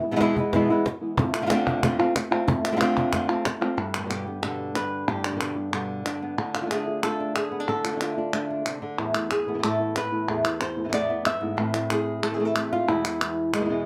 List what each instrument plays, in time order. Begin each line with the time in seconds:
0.03 nylon-string guitar E3 G#3 B3 E4, cajon slap
0.11 nylon-string guitar B2 E3 G#3 B3 E4
0.16 nylon-string guitar B2 E3 G#3 B3 E4
0.20 nylon-string guitar E2 B2 E3 G#3 B3 E4, muted nylon-string guitar stroke, cajon slap
0.36 nylon-string guitar E3 G#3 B3 E4, cajon bass
0.52 nylon-string guitar E2 B2 E3 G#3 B3 E4, cajon bass, cajon slap
0.68 nylon-string guitar E3 G#3 B3 E4
0.85 muted nylon-string guitar stroke, cajon slap
1.01 nylon-string guitar E3 G#3 B3 E4
1.17 nylon-string guitar D3 A3 C4 F4, muted nylon-string guitar stroke, cajon bass
1.33 nylon-string guitar A3 C4 F4, cajon slap, clap
1.42 nylon-string guitar D3 A3 C4 F4
1.46 nylon-string guitar D3 A3 C4 F4, cajon slap, clap
1.51 nylon-string guitar D3 A3 C4 F4
1.67 cajon bass
1.83 nylon-string guitar D3 A3 C4 F4, muted nylon-string guitar stroke, cajon bass, clap
1.98 nylon-string guitar A3 C4 F4
2.16 muted nylon-string guitar stroke, cajon slap, clap
2.31 nylon-string guitar A3 C4 F4
2.47 nylon-string guitar D3 A3 C4 F4, muted nylon-string guitar stroke, cajon bass
2.63 nylon-string guitar A3 C4 F4, cajon slap, clap
2.72 nylon-string guitar D3 A3 C4 F4
2.76 nylon-string guitar D3 A3 C4 F4
2.81 nylon-string guitar D3 A3 C4 F4, cajon slap, clap
2.97 cajon bass
3.12 nylon-string guitar D3 A3 C4 F4, muted nylon-string guitar stroke, cajon bass, cajon slap, clap
3.29 nylon-string guitar A3 C4 F4
3.45 muted nylon-string guitar stroke, cajon slap, clap
3.61 nylon-string guitar A3 C4 F4
3.77 nylon-string guitar G2, muted nylon-string guitar stroke, clap
3.94 nylon-string guitar B2 D3 G3 B3 G4, clap
4.01 nylon-string guitar B2 D3 G3 B3 G4
4.06 nylon-string guitar B2 D3 G3 B3 G4
4.10 nylon-string guitar G2 B2 D3 G3 B3 G4, clap
4.26 nylon-string guitar D3 G3 B3 G4
4.42 nylon-string guitar G2 B2 D3 G3 B3 G4 A4, clap
4.75 nylon-string guitar B4, muted nylon-string guitar stroke, clap
5.08 nylon-string guitar G2 G4, muted nylon-string guitar stroke, clap
5.24 nylon-string guitar D4, clap
5.31 nylon-string guitar B2 D3 G3 B3 G4
5.36 nylon-string guitar B2 D3 G3 B3 G4
5.40 nylon-string guitar G2 B2 D3 G3 B3 D4 G4, clap
5.56 nylon-string guitar D3 G3 B3 G4
5.72 nylon-string guitar G2 B2 D3 G3 B3 G4, clap
6.05 nylon-string guitar D4, muted nylon-string guitar stroke, clap
6.22 nylon-string guitar B3
6.38 nylon-string guitar D3, muted nylon-string guitar stroke
6.54 nylon-string guitar A3 D4 F4, clap
6.61 nylon-string guitar D3 A3 D4 F4
6.66 nylon-string guitar D3 A3 D4 F4
6.70 nylon-string guitar D3 A3 D4 F4 G#4, clap
6.86 nylon-string guitar A3 D4 F4
7.03 nylon-string guitar D3 A3 D4 F4 A4, clap
7.20 nylon-string guitar D4
7.35 nylon-string guitar G#4, muted nylon-string guitar stroke, clap
7.52 nylon-string guitar B3
7.60 nylon-string guitar D4
7.68 nylon-string guitar D3 A4, muted nylon-string guitar stroke
7.84 nylon-string guitar A3 D4 F4, clap
7.92 nylon-string guitar D3 A3 D4 F4
7.96 nylon-string guitar D3 A3 D4 F4
8.00 nylon-string guitar D3 A3 D4 F4, clap
8.17 nylon-string guitar A3 D4 F4
8.32 nylon-string guitar D3 A3 D4 F4, clap
8.50 nylon-string guitar D4
8.65 nylon-string guitar C3, muted nylon-string guitar stroke, clap
8.82 nylon-string guitar D3
8.98 nylon-string guitar E2 A2 E3 A3 B3 E4, clap
9.14 nylon-string guitar E3 A3 B3 E4, clap
9.31 nylon-string guitar G#4, muted nylon-string guitar stroke, clap
9.46 nylon-string guitar E3 A3 B3 E4
9.54 nylon-string guitar A2 E3 A3 B3 E4
9.58 nylon-string guitar A2 E3 A3 B3 E4
9.63 nylon-string guitar E2 A2 E3 A3 B3 E4 A4, clap
9.79 nylon-string guitar E3 A3 B3 E4
9.96 nylon-string guitar B4, muted nylon-string guitar stroke, clap
10.12 nylon-string guitar E3 A3 B3 E4
10.28 nylon-string guitar E2 A2 E3 A3 B3 E4
10.44 nylon-string guitar E3 A3 B3 E4, clap
10.60 nylon-string guitar C5, muted nylon-string guitar stroke, clap
10.77 nylon-string guitar E3 A3 B3 E4
10.84 nylon-string guitar A2 E3 A3 B3 E4
10.89 nylon-string guitar A2 E3 A3 B3 E4
10.93 nylon-string guitar E2 A2 E3 A3 B3 E4 D5, clap
11.09 nylon-string guitar E3 A3 B3 E4
11.25 nylon-string guitar F2 E5, muted nylon-string guitar stroke, clap
11.41 nylon-string guitar G#2 E3 A3 B3 E4
11.57 nylon-string guitar A2 E3 A3 C4 E4
11.74 nylon-string guitar A3 C4 E4, clap
11.90 nylon-string guitar A3 C4 E4 G#4, clap
12.23 nylon-string guitar A3 A4, muted nylon-string guitar stroke, clap
12.30 nylon-string guitar E3 A3 C4 E4 G#4
12.35 nylon-string guitar E3 A3 C4 E4
12.40 nylon-string guitar A2 E3 A3 C4 E4
12.45 nylon-string guitar A4
12.55 nylon-string guitar E3 A3 C4 E4, clap
12.71 nylon-string guitar A3 C4 E4 F4
12.88 nylon-string guitar E2 B2 E3 G#3 B3 E4
13.04 nylon-string guitar E3 G#3 B3 E4, clap
13.20 nylon-string guitar E3 G#3 B3 E4, clap
13.53 nylon-string guitar B2 G#3 B3 E4, muted nylon-string guitar stroke, clap
13.60 nylon-string guitar B2 E3 G#3 B3 E4
13.65 nylon-string guitar B2 E3 G#3 B3 E4
13.69 nylon-string guitar E2 B2 E3 G#3 B3 E4